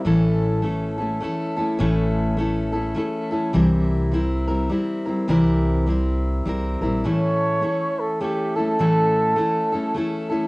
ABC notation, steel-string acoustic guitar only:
X:1
M:3/4
L:1/8
Q:"Swing" 1/4=103
K:Aphr
V:1 name="Steel-string acoustic guitar"
[A,,E,A,^CEA]2 [A,CEA] [A,CEA] [A,CEA] [A,CEA] | [A,,E,A,^CEA]2 [A,CEA] [A,CEA] [A,CEA] [A,CEA] | [C,E,G,CEB]2 [G,CEB] [G,CEB] [G,CEB] [G,CEB] | [C,E,G,CEB]2 [G,CEB]2 [G,CEB] [G,CEB] |
[A,,E,A,^CEA]2 [A,CEA]2 [A,CEA] [A,CEA] | [A,,E,A,^CEA]2 [A,CEA] [A,CEA] [A,CEA] [A,CEA] |]